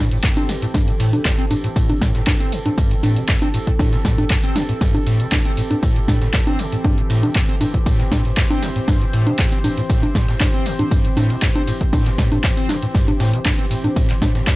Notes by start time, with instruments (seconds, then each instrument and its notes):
Already playing: analog synth pad E3 C4 G4 A4
0.11 acid bass A2, closed hi-hat
0.23 acid bass G2, kick, snare, clap, closed hi-hat, open hi-hat
0.37 acid bass C4, closed hi-hat, ride, high conga
0.49 acid bass C3, snare, open hi-hat, ride
0.62 acid bass A2, closed hi-hat
0.74 acid bass G2, kick, snare, closed hi-hat, ride, high conga
0.88 acid bass B2, closed hi-hat
1.00 acid bass A2, open hi-hat, ride
1.13 acid bass C3, closed hi-hat, high conga
1.25 acid bass G2, kick, snare, clap, closed hi-hat, ride
1.38 acid bass C4, closed hi-hat
1.51 acid bass A2, open hi-hat, ride, high conga
1.64 acid bass A2, closed hi-hat
1.76 acid bass A2, kick, closed hi-hat, ride
1.89 acid bass B2, closed hi-hat, high conga
2.01 acid bass A2, kick, snare, open hi-hat, ride
2.15 acid bass A2, snare, closed hi-hat
2.27 acid bass G2, kick, snare, clap, closed hi-hat, ride, high conga
2.40 acid bass C4, closed hi-hat
2.52 acid bass C3, open hi-hat, ride
2.66 acid bass A2, closed hi-hat, high conga
2.78 acid bass G2, kick, closed hi-hat, ride
2.91 acid bass B2, closed hi-hat
3.03 acid bass A2, snare, open hi-hat, ride, high conga
3.16 acid bass C3, closed hi-hat
3.29 acid bass G2, kick, snare, clap, closed hi-hat, ride
3.42 acid bass C4, closed hi-hat, high conga
3.54 acid bass A2, open hi-hat, ride
3.67 acid bass A2, kick, closed hi-hat
3.79 acid bass A2, kick, closed hi-hat, ride, high conga
3.93 acid bass B2, snare, closed hi-hat
4.05 acid bass A2, kick, snare, open hi-hat, ride
4.18 acid bass A2, closed hi-hat, high conga
4.30 acid bass G2, kick, snare, clap, closed hi-hat, open hi-hat
4.44 acid bass C4, closed hi-hat, ride
4.56 acid bass C3, snare, open hi-hat, ride, high conga
4.69 acid bass A2, closed hi-hat
4.81 acid bass G2, kick, snare, closed hi-hat, ride
4.94 acid bass B2, closed hi-hat, high conga
5.06 acid bass A2, open hi-hat, ride
5.20 acid bass C3, closed hi-hat
5.32 acid bass G2, kick, snare, clap, closed hi-hat, ride, high conga
5.45 acid bass C4, closed hi-hat
5.57 acid bass A2, open hi-hat, ride
5.71 acid bass A2, closed hi-hat, high conga
5.83 acid bass A2, kick, closed hi-hat, ride
5.96 acid bass B2, closed hi-hat
6.08 acid bass A2, kick, snare, open hi-hat, ride, high conga
6.22 acid bass A2, snare, closed hi-hat
6.34 acid bass G2, kick, snare, clap, closed hi-hat, ride
6.47 acid bass C4, closed hi-hat, high conga
6.59 acid bass C3, open hi-hat, ride
6.72 acid bass A2, closed hi-hat
6.84 acid bass G2, kick, closed hi-hat, high conga
6.98 acid bass B2, closed hi-hat
7.10 acid bass A2, snare, open hi-hat, ride
7.23 acid bass C3, closed hi-hat, high conga
7.35 acid bass G2, kick, snare, clap, closed hi-hat, ride
7.49 acid bass C4, closed hi-hat
7.61 acid bass A2, open hi-hat, ride, high conga
7.74 acid bass A2, kick, closed hi-hat
7.86 acid bass A2, analog synth pad C5, kick, closed hi-hat, ride
8.00 acid bass B2, snare, closed hi-hat
8.12 acid bass A2, kick, snare, open hi-hat, ride, high conga
8.25 acid bass A2, closed hi-hat
8.37 acid bass G2, kick, snare, clap, closed hi-hat, open hi-hat
8.50 acid bass C4, closed hi-hat, ride, high conga
8.62 acid bass C3, snare, open hi-hat, ride
8.76 acid bass A2, closed hi-hat
8.88 acid bass G2, kick, snare, closed hi-hat, ride, high conga
9.01 acid bass B2, closed hi-hat
9.13 acid bass A2, open hi-hat, ride
9.27 acid bass C3, closed hi-hat, high conga
9.39 acid bass G2, kick, snare, clap, closed hi-hat, ride
9.52 acid bass C4, closed hi-hat
9.64 acid bass A2, open hi-hat, ride, high conga
9.78 acid bass A2, closed hi-hat
9.90 acid bass A2, kick, closed hi-hat, ride
10.03 acid bass B2, closed hi-hat, high conga
10.15 acid bass A2, kick, snare, open hi-hat, ride
10.28 acid bass A2, snare, closed hi-hat
10.40 acid bass G2, kick, snare, clap, closed hi-hat, ride, high conga
10.54 acid bass C4, closed hi-hat
10.66 acid bass C3, open hi-hat, ride
10.79 acid bass A2, closed hi-hat, high conga
10.91 acid bass G2, kick, closed hi-hat, ride
11.05 acid bass B2, closed hi-hat
11.17 acid bass A2, snare, open hi-hat, ride, high conga
11.30 acid bass C3, closed hi-hat
11.42 acid bass G2, kick, snare, clap, closed hi-hat, ride
11.55 acid bass C4, closed hi-hat, high conga
11.67 acid bass A2, open hi-hat, ride
11.81 acid bass A2, kick, closed hi-hat
11.93 acid bass A2, kick, closed hi-hat, ride, high conga
12.06 acid bass B2, snare, closed hi-hat
12.18 acid bass A2, kick, snare, open hi-hat, ride
12.32 acid bass A2, closed hi-hat, high conga
12.44 acid bass G2, kick, snare, clap, closed hi-hat, open hi-hat
12.57 acid bass C4, closed hi-hat, ride
12.69 acid bass C3, snare, open hi-hat, ride, high conga
12.82 acid bass A2, closed hi-hat
12.94 acid bass G2, kick, snare, closed hi-hat, ride
13.08 acid bass B2, closed hi-hat, high conga
13.20 acid bass A2, snare, open hi-hat
13.33 acid bass C3, closed hi-hat
13.45 acid bass G2, kick, snare, clap, closed hi-hat, ride, high conga
13.59 acid bass C4, closed hi-hat
13.71 acid bass A2, open hi-hat, ride
13.84 acid bass A2, closed hi-hat, high conga
13.96 acid bass A2, kick, closed hi-hat, ride
14.09 acid bass B2, clap, closed hi-hat
14.22 acid bass A2, kick, snare, open hi-hat, ride, high conga
14.35 acid bass A2, snare, closed hi-hat
14.47 acid bass G2, kick, snare, clap, closed hi-hat, ride